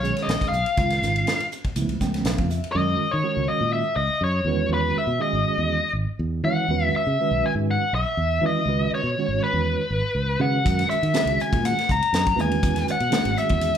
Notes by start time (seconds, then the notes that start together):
Already playing: B1
0.00 A#2 D#3 G#3 C#4 G#4 C#5, hi-hat pedal
0.16 snare, ride
0.22 D#5
0.28 A#1, snare, hi-hat pedal, ride
0.41 muted fingered electric bass stroke, kick, snare, ride
0.49 B1 F5
0.53 hi-hat pedal
0.66 ride
0.76 C#2 A#2 D#3 G#3 C#4 F4, kick, hi-hat pedal, ride
0.90 snare, ride
1.02 G#1, snare, hi-hat pedal
1.16 ride
1.27 snare, hi-hat pedal, ride
1.40 ride
1.51 hi-hat pedal
1.64 kick, ride
1.76 C#2 C#3 F3 A3 B3 E4, hi-hat pedal, ride
1.88 C#2, ride
2.00 C#2 C#3 F3 A3 B3 C#4 G5, kick, snare, hi-hat pedal
2.14 snare, ride
2.25 B1 F5, snare, hi-hat pedal, ride
2.38 F2, kick, ride
2.50 E5, hi-hat pedal
2.64 ride
2.72 F#2 D#3 G#3 C#4 F#4 A#4 D#5
3.00 muted fingered electric bass stroke
3.11 D#3 C#5
3.23 D#3 G#3 C#4 F#4 A#4
3.37 C#2
3.48 D#5, muted fingered electric bass stroke
3.61 A#2
3.73 E5
3.96 C#2 D#5
4.10 muted fingered electric bass stroke
4.21 F#2 C#5
4.45 E2 D#3 G#3 C#4 F#4 B4
4.69 E2
4.74 B4
4.96 E5, muted fingered electric bass stroke
5.07 B2
5.19 D#3 G#3 C#4 F#4 G#4 D#5
5.33 G#1
5.58 E2
5.93 G#1
6.07 muted fingered electric bass stroke
6.19 E2
6.44 D#3 E3 G#3 C#4 F#4 C#5 F#5
6.68 E2 D#3 G#3 C#4 F#4 B4
6.94 E5, muted fingered electric bass stroke
7.07 C#3
7.20 D#3 G#3 C#4 F#4 B4
7.31 B1
7.46 G#5
7.55 G#2
7.71 F#5
7.93 B1 E5
8.05 muted fingered electric bass stroke
8.17 E2
8.41 D#3 E3 G#3 C#4 F#4 B4
8.46 D#5
8.66 C#2 D#3 G#3 C#4 F#4 B4
8.95 C#5
9.03 B2
9.18 D#3 G#3 C#4 F#4 C#5
9.29 G#1
9.40 B4, muted fingered electric bass stroke
9.53 E2
9.90 G#1
10.04 muted fingered electric bass stroke
10.15 C#2
10.39 C#3 D#3 G#3 C#4 F#4 B4 F#5
10.64 F#2 D#3 G#3 C#4 F#4 A#4, kick, hi-hat pedal, ride, muted conga
10.79 snare, ride
10.88 E5, muted fingered electric bass stroke, hi-hat pedal
11.03 D#3, ride
11.14 D#3 G#3 C#4 F#4 G#4, snare, hi-hat pedal, ride, high conga
11.25 C#2, ride
11.37 muted fingered electric bass stroke, hi-hat pedal
11.41 G#5
11.53 A#2, kick, ride
11.63 F#5, hi-hat pedal, ride, muted conga, high conga
11.79 snare, ride
11.89 C#2 A#5, kick, hi-hat pedal
12.01 muted fingered electric bass stroke, ride
12.13 F#2, snare, hi-hat pedal, ride
12.26 kick, ride
12.35 E2 D#3 G#3 C#4 F#4 B4, hi-hat pedal, muted conga, high conga
12.41 G#5
12.51 ride
12.63 E2, kick, hi-hat pedal, ride, muted conga
12.76 snare, ride
12.88 F#5, muted fingered electric bass stroke, hi-hat pedal
13.00 B2, ride
13.10 D#3 G#3 C#4 F#4 G#4, snare, hi-hat pedal, ride, high conga
13.25 G#1, ride
13.37 E5, muted fingered electric bass stroke, hi-hat pedal
13.49 E2, kick, ride
13.61 hi-hat pedal, ride, muted conga